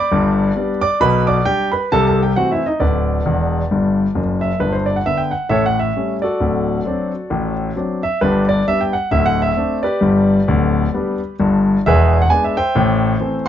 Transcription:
0.00 0.80 D5 medium
0.00 0.79 B5 medium
0.00 0.69 D6 loud
0.12 0.50 G1 medium
0.12 0.50 G2 medium
0.56 0.81 G3 soft
0.56 0.81 B3 soft
0.56 0.82 D4 medium
0.82 1.00 D5 medium
0.82 0.98 D6 loud
1.01 1.39 B1 medium
1.01 1.39 B2 medium
1.01 1.26 B4 medium
1.01 1.23 B5 loud
1.27 1.45 D5 medium
1.27 1.43 D6 medium
1.46 1.70 G3 soft
1.46 1.71 D4 medium
1.46 1.71 G4 medium
1.46 1.68 G5 loud
1.72 1.90 B4 medium
1.72 1.88 B5 medium
1.92 2.30 C2 medium
1.92 2.30 C3 medium
1.92 2.06 A4 medium
1.92 2.04 A5 loud
2.07 2.22 A4 medium
2.07 2.19 A5 medium
2.23 2.37 G4 medium
2.23 2.35 G5 medium
2.36 2.61 E3 soft
2.36 2.62 A3 soft
2.36 2.62 C4 medium
2.36 2.51 F#4 medium
2.36 2.49 F#5 medium
2.52 2.66 E4 medium
2.52 2.64 E5 medium
2.66 2.81 D#4 soft
2.66 2.79 D#5 medium
2.80 3.19 D1 medium
2.80 3.19 D2 medium
2.80 4.39 D4 soft
2.80 4.39 B4 soft
2.80 4.18 D5 medium
3.26 3.60 E1 medium
3.26 3.60 E2 medium
3.71 4.05 G1 medium
3.71 4.05 G2 medium
4.15 4.49 F#1 medium
4.15 4.50 F#2 medium
4.41 4.58 E5 medium
4.60 4.99 G1 medium
4.60 4.99 G2 medium
4.60 4.74 B4 medium
4.72 4.87 C5 medium
4.86 4.96 D5 medium
4.96 5.06 F#5 medium
5.06 5.31 D3 soft
5.06 5.31 B3 soft
5.06 5.19 E5 medium
5.17 5.32 G5 medium
5.31 5.48 F#5 medium
5.49 5.89 A1 medium
5.49 5.89 A2 medium
5.49 5.65 A4 medium
5.49 5.65 C#5 medium
5.49 5.63 E5 medium
5.66 5.79 F#5 medium
5.79 6.16 E5 medium
5.96 6.21 G3 soft
5.96 6.21 A3 soft
5.96 6.22 C#4 soft
6.22 7.73 F#4 soft
6.22 7.73 A4 medium
6.22 7.53 D5 medium
6.40 6.79 D1 medium
6.40 6.79 D2 medium
6.85 7.11 F#3 soft
6.85 7.11 C4 soft
6.85 7.12 D4 medium
7.30 7.69 A1 medium
7.30 7.69 A2 medium
7.76 8.01 F#3 soft
7.76 8.02 C4 soft
7.76 8.02 D4 soft
8.03 8.19 E5 medium
8.21 8.60 G1 medium
8.21 8.60 G2 medium
8.21 8.47 D4 medium
8.21 8.47 G4 medium
8.21 8.44 B4 medium
8.49 8.65 D5 medium
8.68 8.93 G3 soft
8.68 8.93 B3 soft
8.68 8.93 D4 soft
8.68 8.81 E5 medium
8.81 8.94 G5 medium
8.93 9.09 F#5 medium
9.11 9.50 D1 medium
9.11 9.51 D2 medium
9.11 9.25 E5 medium
9.26 9.39 F#5 medium
9.42 9.78 E5 medium
9.57 9.82 A3 soft
9.57 9.82 C4 soft
9.57 9.83 D4 medium
9.83 11.35 G4 medium
9.83 11.35 B4 medium
9.83 11.15 D5 medium
10.01 10.38 G1 medium
10.01 10.38 G2 medium
10.48 10.84 D1 medium
10.48 10.84 D2 medium
10.94 11.19 G3 soft
10.94 11.19 B3 medium
10.94 11.19 D4 soft
11.40 11.76 G1 medium
11.40 11.76 G2 medium
11.86 12.24 E1 medium
11.86 12.24 E2 medium
11.86 12.20 G#4 medium
11.86 12.20 B4 medium
11.86 12.16 E5 loud
12.22 12.30 F#5 medium
12.30 12.55 G#3 soft
12.30 12.55 B3 soft
12.30 12.55 D4 medium
12.30 12.43 G#5 medium
12.44 12.56 E5 medium
12.57 13.44 C5 medium
12.57 13.44 E5 medium
12.57 13.34 G5 medium
12.75 13.14 A1 medium
12.75 13.14 A2 medium
13.20 13.45 E3 soft
13.20 13.45 A3 soft
13.20 13.45 C4 medium

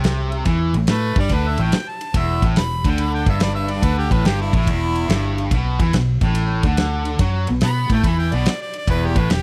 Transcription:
0.00 0.42 C2 medium
0.00 0.45 C3 loud
0.00 ride medium
0.05 snare loud
0.32 ride medium
0.45 0.72 E2 medium
0.45 0.73 E3 loud
0.45 kick loud
0.45 ride medium
0.73 0.87 A1 medium
0.73 0.86 A2 medium
0.73 ride medium
0.87 1.14 A2 medium
0.87 1.16 A3 loud
0.87 snare loud
0.87 ride medium
0.91 1.17 B4 loud
1.16 1.29 G2 loud
1.16 1.31 G3 loud
1.16 1.35 D5 loud
1.16 kick loud
1.16 ride medium
1.29 1.56 D2 medium
1.29 1.58 D3 loud
1.29 kick loud
1.29 ride medium
1.33 1.50 B4 medium
1.48 1.64 E5 medium
1.57 1.71 A1 medium
1.57 1.72 A2 loud
1.57 ride medium
1.63 1.90 G5 medium
1.72 snare loud
1.72 ride loud
1.89 2.20 A5 medium
2.01 ride medium
2.14 2.40 E1 loud
2.14 2.42 E2 loud
2.14 kick loud
2.14 ride loud
2.18 2.44 E5 loud
2.42 2.55 A1 medium
2.42 2.56 A2 loud
2.42 kick loud
2.42 ride medium
2.56 2.83 E1 medium
2.56 2.79 E2 medium
2.56 2.92 B5 loud
2.56 snare loud
2.56 ride medium
2.84 3.24 D2 medium
2.84 3.26 D3 loud
2.84 kick loud
2.84 ride medium
2.90 3.03 G5 loud
2.98 ride loud
3.02 3.14 B5 loud
3.15 3.27 G5 medium
3.26 3.79 G1 medium
3.26 3.82 G2 loud
3.26 3.42 E5 medium
3.26 kick loud
3.26 ride medium
3.40 3.55 D5 medium
3.40 snare loud
3.40 ride loud
3.55 3.72 E5 medium
3.68 3.86 D5 medium
3.68 ride medium
3.82 4.09 D2 medium
3.82 4.10 D3 loud
3.82 3.98 B4 loud
3.82 kick loud
3.82 ride medium
3.98 4.14 G4 medium
4.11 4.23 A1 medium
4.11 4.25 A2 loud
4.11 4.27 B4 medium
4.11 kick loud
4.11 ride medium
4.24 4.51 G1 medium
4.24 4.52 G2 loud
4.24 4.39 G4 loud
4.24 snare loud
4.24 ride medium
4.42 4.54 E4 medium
4.53 4.66 A1 medium
4.53 4.67 A2 loud
4.53 5.50 E4 loud
4.53 kick loud
4.53 ride medium
4.61 snare soft
4.67 5.06 E1 medium
4.67 5.08 E2 loud
4.67 kick loud
4.67 ride medium
4.95 ride medium
5.09 5.48 G1 medium
5.09 5.51 G2 loud
5.09 snare loud
5.09 ride medium
5.38 ride medium
5.51 5.78 B1 medium
5.51 5.79 B2 medium
5.51 kick loud
5.51 ride medium
5.79 5.92 E2 medium
5.79 5.94 E3 loud
5.79 kick loud
5.79 ride medium
5.93 6.20 B1 medium
5.93 6.17 B2 medium
5.93 snare loud
5.93 ride loud
6.21 6.61 A1 medium
6.21 6.64 A2 loud
6.21 kick loud
6.21 ride medium
6.35 ride loud
6.63 7.16 D2 medium
6.63 7.20 D3 loud
6.63 kick loud
6.63 ride medium
6.77 snare loud
6.77 ride loud
7.05 ride medium
7.19 7.46 F#2 loud
7.19 7.47 F#3 loud
7.19 kick loud
7.19 ride loud
7.47 7.62 B1 medium
7.47 7.59 B2 medium
7.47 ride medium
7.61 7.88 B2 medium
7.61 7.90 B3 loud
7.61 7.90 B5 loud
7.61 snare loud
7.61 ride medium
7.90 8.03 A2 medium
7.90 8.05 A3 loud
7.90 8.07 G5 medium
7.90 kick loud
7.90 ride medium
8.04 8.30 E2 loud
8.04 8.32 E3 loud
8.04 8.18 B5 medium
8.04 kick loud
8.04 ride medium
8.19 8.36 G5 loud
8.32 8.45 B1 medium
8.32 8.46 B2 medium
8.32 8.47 D5 loud
8.32 ride medium
8.46 8.61 D5 medium
8.46 snare loud
8.46 ride medium
8.62 8.74 D5 medium
8.73 ride medium
8.78 8.90 D5 medium
8.87 9.14 E1 loud
8.87 9.16 E2 medium
8.87 9.08 B4 loud
8.87 kick loud
8.87 ride medium
9.06 9.20 G4 loud
9.15 9.29 A1 medium
9.15 9.29 A2 loud
9.15 9.34 B4 loud
9.15 kick loud
9.15 ride medium
9.29 9.42 E1 medium
9.29 9.42 E2 medium
9.29 9.42 G4 loud
9.29 snare loud
9.29 ride medium

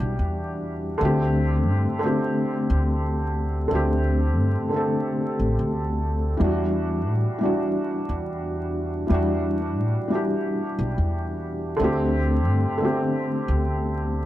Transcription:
0.00 0.17 B1 medium
0.00 1.02 E3 medium
0.00 1.03 G3 medium
0.00 1.03 D4 medium
0.00 1.03 F#4 medium
0.00 1.00 G4 medium
0.19 0.98 E2 medium
0.98 1.68 D2 loud
0.98 1.97 D3 loud
0.98 1.98 A3 medium
1.02 1.99 C4 medium
1.02 2.01 G4 loud
1.68 1.85 G2 loud
1.99 3.66 D3 medium
1.99 3.67 A3 medium
2.04 3.68 C4 medium
2.04 3.69 G4 medium
2.70 3.68 D2 medium
3.68 4.38 D2 medium
3.68 4.67 D3 medium
3.68 4.68 A3 medium
3.73 4.69 C4 medium
3.73 4.70 G4 medium
4.38 4.55 G2 loud
4.69 6.36 D3 medium
4.69 6.37 A3 medium
4.74 6.38 C4 medium
4.74 6.39 A4 medium
5.39 5.56 A1 medium
5.59 6.38 D2 medium
6.37 7.08 E2 loud
6.37 7.36 E3 medium
6.37 7.38 G3 medium
6.42 7.39 D4 medium
6.42 7.40 F#4 loud
7.08 7.25 A2 loud
7.39 9.05 E3 medium
7.39 9.06 G3 medium
7.43 9.07 D4 medium
7.43 9.08 F#4 medium
8.09 9.07 E2 medium
9.07 9.78 E2 loud
9.07 10.06 E3 medium
9.07 10.07 G3 medium
9.12 10.08 D4 medium
9.12 10.10 F#4 medium
9.78 9.94 A2 loud
10.08 11.75 E3 medium
10.08 11.76 G3 medium
10.12 11.77 D4 medium
10.12 11.78 G4 medium
10.79 10.95 B1 medium
10.98 11.77 E2 medium
11.76 12.47 D2 loud
11.76 12.76 D3 loud
11.76 12.77 A3 medium
11.81 12.78 C4 medium
11.81 12.79 G4 loud
12.47 12.64 G2 loud
12.78 14.26 D3 medium
12.78 14.26 A3 medium
12.83 14.26 C4 medium
12.83 14.26 G4 loud
13.48 14.26 D2 medium

